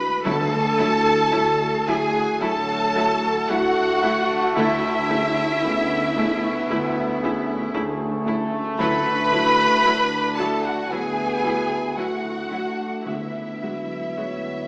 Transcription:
Already playing: felt piano G#3 E4 F#4, harp G#3 D4 E4 F#4 G#4 E5 F#5, cello section B4, violin section B5, flute B5
0.25 double bass section D2, felt piano D2, harp D3, timpani D3, viola section F#3 E4, cello section A4, violin section A5, flute A5
0.52 harp D4
0.78 viola section F#3 E4, harp A3, felt piano A3 E4 F#4
1.06 harp E4
1.32 double bass section D2, viola section F#3 E4, felt piano A3 E4 F#4, harp F#4
1.86 viola section F#3 E4, felt piano A3 E4 F#4, cello section G#4, harp E5, violin section G#5, flute G#5
2.14 harp F#5
2.39 double bass section D2, felt piano A2, french horn section F#3, viola section F#3 E4, cello section A4, harp E5, violin section A5, flute A5
2.68 harp F#5
2.95 viola section F#3 E4, felt piano A3 E4 F#4, harp E5
3.48 double bass section D2, viola section F#3 E4, french horn section A3, felt piano A3 E4 F#4, cello section F#4, harp F#4, violin section F#5, flute F#5
3.77 harp E4
4.03 viola section F#3 E4, felt piano A3 E4 F#4, harp A3
4.31 harp D4
4.56 double bass section D2, felt piano D2, timpani D3, harp D3, viola section A3 E4, cello section E4, violin section E5, flute E5
4.84 harp A3
5.09 viola section A3 E4, felt piano A3 C#4 G#4, harp C#4
5.62 double bass section D2, viola section A3 E4, felt piano A3 C#4 G#4, french horn section B3
5.90 harp C#5
6.16 viola section A3 E4, felt piano A3 C#4 G#4, harp G#5
6.43 harp C#6
6.69 double bass section D2, felt piano D2, viola section A3 E4, harp G#5
7.22 felt piano A3 C#4 G#4, viola section A3 E4, harp G#5
7.48 harp C#5
7.73 double bass section D2, french horn section A3, felt piano A3 C#4 G#4, viola section A3 E4
8.00 harp G#4
8.26 felt piano A3 C#4 G#4, viola section A3 E4, harp C#4
8.53 harp A3
8.78 felt piano D2, double bass section D2, harp D3, timpani D3, viola section F#3 E4, cello section B4, violin section B5, flute B5
9.05 harp D4
9.32 viola section F#3 E4, felt piano A3 E4 F#4, harp A3
9.58 harp E4
9.85 double bass section D2, viola section F#3 E4, felt piano A3 E4 F#4, french horn section D4, harp F#4
10.37 viola section F#3 E4, felt piano A3 E4 F#4, cello section A4, harp E5, violin section A5, flute A5
10.64 cello section F#4, harp F#5, violin section F#5, flute F#5
10.90 double bass section D2, felt piano A2, viola section F#3 E4, french horn section B3, cello section G#4, harp E5, flute G#5, violin section G#5
11.18 harp F#5
11.44 viola section F#3 E4, felt piano A3 E4 F#4, harp E5
11.70 harp A4
11.95 double bass section D2, viola section F#3 E4, french horn section A3, felt piano A3 E4 F#4, harp F#4, cello section F#4, violin section F#5, flute F#5
12.24 harp E4
12.49 viola section F#3 E4, french horn section A3, felt piano A3 E4 F#4, harp A3
12.79 harp D4
13.05 double bass section D2, felt piano D2, timpani D3, harp D3, viola section G#3 F#4, french horn section B3, cello section E4, violin section E5, flute E5
13.34 harp D4
13.61 harp F#3, felt piano G#3 E4 F#4, viola section G#3 F#4
13.89 harp E4
14.17 double bass section D2, viola section G#3 F#4, felt piano G#3 E4 F#4, harp F#4, clarinet C#5
14.44 harp G#5

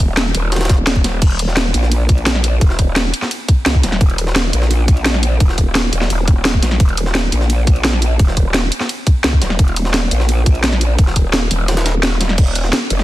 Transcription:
Already playing: wobble bass D#1
0.17 snare, closed hi-hat, ride
0.35 wobble bass D#1, closed hi-hat, ride
0.52 snare, closed hi-hat, ride
0.56 snare, ride
0.61 snare, ride
0.65 snare, ride
0.69 kick, snare, closed hi-hat, ride
0.87 snare, closed hi-hat, ride
0.96 kick, ride
1.04 snare, closed hi-hat, ride
1.22 wobble bass D#1, kick, closed hi-hat, crash, ride
1.31 ride
1.39 closed hi-hat, ride
1.48 snare
1.57 snare, closed hi-hat, ride
1.74 wobble bass A#1, closed hi-hat, ride
1.83 snare
1.92 closed hi-hat, ride
2.09 kick, closed hi-hat, ride
2.18 ride
2.26 snare, closed hi-hat, ride
2.35 snare
2.44 closed hi-hat, ride
2.61 wobble bass D#1, kick, closed hi-hat, ride
2.70 snare
2.79 kick, closed hi-hat, ride
2.96 snare, closed hi-hat, ride
3.14 closed hi-hat, ride
3.22 snare
3.31 closed hi-hat, ride
3.49 kick, closed hi-hat, ride
3.66 wobble bass C#2, snare, closed hi-hat, ride
3.75 kick
3.83 wobble bass D#1, snare, closed hi-hat, ride
3.92 snare
4.01 wobble bass D#1, kick, closed hi-hat, ride
4.10 ride
4.18 closed hi-hat, ride
4.27 snare
4.36 snare, closed hi-hat, ride
4.53 wobble bass A#1, closed hi-hat, ride
4.62 snare
4.71 closed hi-hat, ride
4.88 kick, closed hi-hat, ride
4.97 ride
5.06 snare, closed hi-hat, ride
5.14 snare
5.23 closed hi-hat, ride
5.40 wobble bass D#1, kick, closed hi-hat, ride
5.49 snare
5.58 kick, closed hi-hat, ride
5.75 snare, closed hi-hat, ride
5.93 wobble bass D#1, closed hi-hat, ride
6.01 snare
6.10 wobble bass D#1, closed hi-hat, ride
6.28 kick, closed hi-hat, ride
6.45 snare, closed hi-hat, ride
6.54 kick
6.63 wobble bass A#1, snare, closed hi-hat, ride
6.71 snare
6.80 wobble bass D#1, kick, closed hi-hat, ride
6.89 ride
6.97 closed hi-hat, ride
7.06 snare
7.15 snare, closed hi-hat, ride
7.32 wobble bass A#1, closed hi-hat, ride
7.41 snare
7.50 closed hi-hat, ride
7.67 kick, closed hi-hat, ride
7.76 ride
7.85 snare, closed hi-hat, ride
7.93 snare
8.02 closed hi-hat, ride
8.19 wobble bass D#1, kick, closed hi-hat, ride
8.28 snare
8.37 kick, closed hi-hat, ride
8.54 snare, closed hi-hat, ride
8.72 closed hi-hat, ride
8.81 snare
8.89 closed hi-hat, ride
9.07 kick, closed hi-hat, ride
9.24 wobble bass C#2, snare, closed hi-hat, ride
9.33 kick
9.42 wobble bass D#1, snare, closed hi-hat, ride
9.50 snare
9.59 wobble bass D#1, kick, closed hi-hat, ride
9.68 ride
9.76 closed hi-hat, ride
9.85 snare
9.94 snare, closed hi-hat, ride
10.11 wobble bass A#1, closed hi-hat, ride
10.20 snare
10.29 closed hi-hat, ride
10.46 kick, closed hi-hat, ride
10.55 ride
10.64 snare, closed hi-hat, ride
10.72 snare
10.81 closed hi-hat, ride
10.99 wobble bass D#1, kick, closed hi-hat, ride
11.07 snare
11.16 kick, closed hi-hat, ride
11.33 snare, closed hi-hat, ride
11.51 wobble bass D#1, closed hi-hat, ride
11.68 snare, closed hi-hat, ride
11.77 snare, ride
11.86 snare, closed hi-hat, ride
12.03 snare, closed hi-hat, ride
12.21 snare, closed hi-hat, ride
12.29 snare
12.38 wobble bass D#1, kick, closed hi-hat, ride, crash
12.47 ride
12.55 closed hi-hat, ride
12.64 snare
12.73 snare, closed hi-hat, ride
12.90 wobble bass F1, closed hi-hat, ride
12.99 snare

